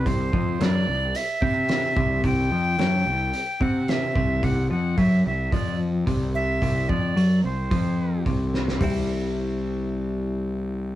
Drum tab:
HH |o---o---o---o---|o---o---o---o---|o---o---o---o---|o---o---o---o---|
SD |----o-------o---|----o-------o---|----------------|--------------oo|
FT |----------------|----------------|----------------|----------------|
BD |o-o-------o---o-|o---------o---o-|o---o---o---o---|o-o-----o---o---|

HH |o---------------|
SD |----------------|
FT |o---------------|
BD |o---------------|